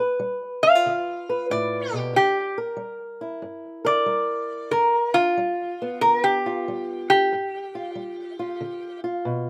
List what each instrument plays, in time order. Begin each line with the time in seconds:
Already playing: steel-string acoustic guitar G2
0.00 steel-string acoustic guitar B4
0.20 steel-string acoustic guitar G3
0.63 steel-string acoustic guitar D4, resonator guitar played with a steel bar F5
0.75 steel-string acoustic guitar F4
0.86 steel-string acoustic guitar D3
1.29 steel-string acoustic guitar B4
1.50 steel-string acoustic guitar A2, resonator guitar played with a steel bar D5
1.93 steel-string acoustic guitar B2, resonator guitar played with a steel bar G4
2.13 steel-string acoustic guitar C3, resonator guitar played with a steel bar G4
2.58 steel-string acoustic guitar A#4
2.77 steel-string acoustic guitar G3
3.21 steel-string acoustic guitar E4
3.42 steel-string acoustic guitar G2
3.85 steel-string acoustic guitar A#4, resonator guitar played with a steel bar D5
4.06 steel-string acoustic guitar G3
4.71 steel-string acoustic guitar G2, resonator guitar played with a steel bar A#4
5.14 resonator guitar played with a steel bar F4, steel-string acoustic guitar F4
5.37 steel-string acoustic guitar G3
5.82 steel-string acoustic guitar B3
6.01 steel-string acoustic guitar D3, resonator guitar played with a steel bar A#4
6.24 resonator guitar played with a steel bar G4
6.46 steel-string acoustic guitar F4
6.68 steel-string acoustic guitar G3
7.10 resonator guitar played with a steel bar G4
7.32 steel-string acoustic guitar G2
7.75 steel-string acoustic guitar F4
7.95 steel-string acoustic guitar G3
8.39 steel-string acoustic guitar F4
8.61 steel-string acoustic guitar D3
9.04 steel-string acoustic guitar F4
9.25 steel-string acoustic guitar B2